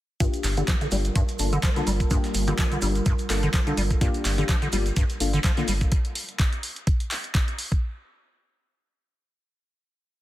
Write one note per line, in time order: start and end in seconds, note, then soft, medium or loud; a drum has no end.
0.20 0.28 G2 loud
0.20 5.88 G3 medium
0.20 0.54 A#3 medium
0.20 0.54 D4 medium
0.20 5.88 F4 medium
0.20 0.54 F4 medium
0.20 0.54 G4 medium
0.20 5.88 A#4 medium
0.20 kick loud
0.20 closed hi-hat medium
0.20 maracas medium
0.33 closed hi-hat soft
0.33 maracas soft
0.44 0.62 G1 loud
0.44 clap medium
0.44 open hi-hat medium
0.44 open hi-hat loud
0.44 maracas medium
0.57 0.63 D3 medium
0.57 0.66 A#3 medium
0.57 0.66 D4 medium
0.57 0.66 F4 medium
0.57 0.66 G4 loud
0.57 closed hi-hat soft
0.57 maracas soft
0.68 0.75 F3 medium
0.68 kick loud
0.68 snare loud
0.68 clap loud
0.68 closed hi-hat medium
0.68 maracas soft
0.81 0.87 D3 medium
0.81 closed hi-hat soft
0.81 maracas soft
0.91 1.10 G1 loud
0.91 0.96 G3 medium
0.91 1.03 A#3 medium
0.91 1.03 D4 medium
0.91 1.03 F4 medium
0.91 1.03 G4 medium
0.91 snare soft
0.91 closed hi-hat medium
0.91 open hi-hat medium
0.91 maracas medium
1.04 closed hi-hat soft
1.04 maracas soft
1.16 1.23 G2 loud
1.16 kick loud
1.16 closed hi-hat medium
1.16 maracas soft
1.28 closed hi-hat soft
1.28 maracas soft
1.39 1.58 G1 medium
1.39 1.51 A#3 medium
1.39 1.51 D4 medium
1.39 1.51 F4 medium
1.39 1.51 A4 loud
1.39 closed hi-hat medium
1.39 open hi-hat loud
1.39 maracas medium
1.53 1.58 D3 loud
1.53 closed hi-hat soft
1.53 maracas soft
1.63 1.71 F3 medium
1.63 kick loud
1.63 snare loud
1.63 clap loud
1.63 closed hi-hat medium
1.63 closed hi-hat loud
1.63 maracas soft
1.76 1.82 D3 medium
1.76 1.86 A#3 medium
1.76 1.86 D4 medium
1.76 1.86 F4 medium
1.76 1.86 A4 loud
1.76 snare soft
1.76 closed hi-hat soft
1.76 maracas soft
1.87 2.05 G1 loud
1.87 1.91 G3 medium
1.87 closed hi-hat medium
1.87 open hi-hat medium
1.87 maracas medium
2.00 kick medium
2.00 closed hi-hat soft
2.00 maracas soft
2.10 2.18 G2 loud
2.10 2.45 A#3 medium
2.10 2.45 D4 medium
2.10 2.45 F4 medium
2.10 2.45 G4 medium
2.10 kick loud
2.10 closed hi-hat medium
2.10 maracas medium
2.24 snare soft
2.24 closed hi-hat soft
2.24 maracas soft
2.34 2.53 G1 loud
2.34 closed hi-hat medium
2.34 open hi-hat loud
2.34 maracas medium
2.47 2.54 D3 loud
2.47 2.57 A#3 medium
2.47 2.57 D4 medium
2.47 2.57 F4 medium
2.47 2.57 G4 loud
2.47 snare soft
2.47 closed hi-hat soft
2.47 maracas soft
2.58 2.66 F3 medium
2.58 kick loud
2.58 snare loud
2.58 clap loud
2.58 closed hi-hat medium
2.58 maracas soft
2.71 2.77 D3 medium
2.71 closed hi-hat soft
2.71 maracas soft
2.82 3.01 G1 loud
2.82 2.87 G3 medium
2.82 2.94 A#3 medium
2.82 2.94 D4 medium
2.82 2.94 F4 medium
2.82 2.94 G4 medium
2.82 closed hi-hat medium
2.82 open hi-hat medium
2.82 maracas medium
2.95 closed hi-hat soft
2.95 maracas soft
3.06 3.13 G2 loud
3.06 kick loud
3.06 closed hi-hat medium
3.06 maracas medium
3.18 closed hi-hat soft
3.18 maracas soft
3.30 3.48 G1 medium
3.30 3.41 A#3 medium
3.30 3.41 D4 medium
3.30 3.41 F4 medium
3.30 3.41 A4 loud
3.30 snare loud
3.30 clap medium
3.30 closed hi-hat medium
3.30 open hi-hat loud
3.30 maracas medium
3.43 3.49 D3 loud
3.43 closed hi-hat soft
3.43 maracas soft
3.54 3.61 F3 medium
3.54 kick loud
3.54 snare soft
3.54 clap loud
3.54 closed hi-hat medium
3.54 maracas medium
3.67 3.73 D3 medium
3.67 3.76 A#3 medium
3.67 3.76 D4 medium
3.67 3.76 F4 medium
3.67 3.76 A4 loud
3.67 closed hi-hat soft
3.67 maracas soft
3.77 3.96 G1 loud
3.77 3.82 G3 medium
3.77 closed hi-hat medium
3.77 open hi-hat medium
3.77 maracas medium
3.91 kick medium
3.91 closed hi-hat soft
3.91 maracas soft
4.01 4.09 G2 loud
4.01 4.35 A#3 medium
4.01 4.35 D4 medium
4.01 4.35 F4 medium
4.01 4.35 G4 medium
4.01 kick loud
4.01 closed hi-hat medium
4.01 maracas medium
4.14 closed hi-hat soft
4.14 maracas soft
4.25 4.43 G1 loud
4.25 clap medium
4.25 open hi-hat medium
4.25 open hi-hat loud
4.25 maracas medium
4.38 4.44 D3 loud
4.38 4.47 A#3 medium
4.38 4.47 D4 medium
4.38 4.47 F4 medium
4.38 4.47 G4 loud
4.38 closed hi-hat soft
4.38 maracas soft
4.49 4.56 F3 medium
4.49 kick loud
4.49 snare loud
4.49 clap loud
4.49 closed hi-hat medium
4.49 maracas medium
4.62 4.68 D3 medium
4.62 closed hi-hat soft
4.62 maracas soft
4.72 4.91 G1 loud
4.72 4.77 G3 medium
4.72 4.84 A#3 medium
4.72 4.84 D4 medium
4.72 4.84 F4 medium
4.72 4.84 G4 medium
4.72 snare soft
4.72 closed hi-hat medium
4.72 open hi-hat loud
4.72 maracas medium
4.86 closed hi-hat soft
4.86 maracas soft
4.96 5.04 G2 loud
4.96 kick loud
4.96 closed hi-hat medium
4.96 maracas medium
5.10 closed hi-hat soft
5.10 maracas soft
5.20 5.39 G1 medium
5.20 5.32 A#3 medium
5.20 5.32 D4 medium
5.20 5.32 F4 medium
5.20 5.32 A4 loud
5.20 closed hi-hat medium
5.20 open hi-hat loud
5.20 maracas medium
5.33 5.39 D3 loud
5.33 closed hi-hat soft
5.33 maracas soft
5.44 5.51 F3 medium
5.44 kick loud
5.44 snare loud
5.44 clap loud
5.44 closed hi-hat medium
5.44 maracas medium
5.57 5.63 D3 medium
5.57 5.66 A#3 medium
5.57 5.67 D4 medium
5.57 5.67 F4 medium
5.57 5.67 A4 loud
5.57 snare soft
5.57 closed hi-hat soft
5.57 maracas soft
5.68 5.86 G1 loud
5.68 5.72 G3 medium
5.68 closed hi-hat medium
5.68 open hi-hat medium
5.68 maracas medium
5.81 kick medium
5.81 closed hi-hat soft
5.81 maracas soft
5.92 kick loud
5.92 closed hi-hat medium
6.05 closed hi-hat soft
6.15 open hi-hat loud
6.29 closed hi-hat soft
6.39 kick loud
6.39 clap loud
6.39 closed hi-hat medium
6.53 closed hi-hat soft
6.63 open hi-hat medium
6.76 closed hi-hat soft
6.87 kick loud
6.87 closed hi-hat medium
7.00 closed hi-hat soft
7.11 clap medium
7.11 open hi-hat loud
7.24 closed hi-hat soft
7.35 kick loud
7.35 clap loud
7.35 closed hi-hat medium
7.48 closed hi-hat soft
7.59 open hi-hat medium
7.72 kick medium
7.72 closed hi-hat soft